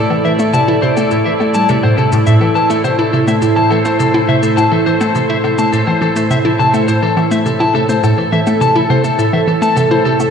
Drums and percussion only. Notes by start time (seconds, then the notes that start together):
0.10 low woodblock
0.39 shaker
0.54 low woodblock, shaker
0.97 low woodblock, shaker
1.11 shaker
1.40 low woodblock
1.54 shaker
1.69 shaker
1.83 low woodblock
2.12 shaker
2.27 shaker
2.41 low woodblock
2.70 shaker
2.85 low woodblock, shaker
3.28 low woodblock, shaker
3.42 shaker
3.71 low woodblock
3.85 shaker
4.00 shaker
4.14 low woodblock
4.43 shaker
4.58 low woodblock, shaker
5.01 low woodblock, shaker
5.15 shaker
5.44 low woodblock
5.58 shaker
5.73 shaker
5.87 low woodblock
6.16 shaker
6.31 low woodblock, shaker
6.74 low woodblock, shaker
6.88 shaker
7.17 low woodblock
7.32 shaker
7.46 shaker
7.60 low woodblock
7.89 shaker
8.04 low woodblock, shaker
8.47 low woodblock, shaker
8.61 shaker
8.90 low woodblock
9.04 shaker
9.19 shaker
9.33 low woodblock
9.62 shaker
9.77 low woodblock, shaker
10.20 low woodblock, shaker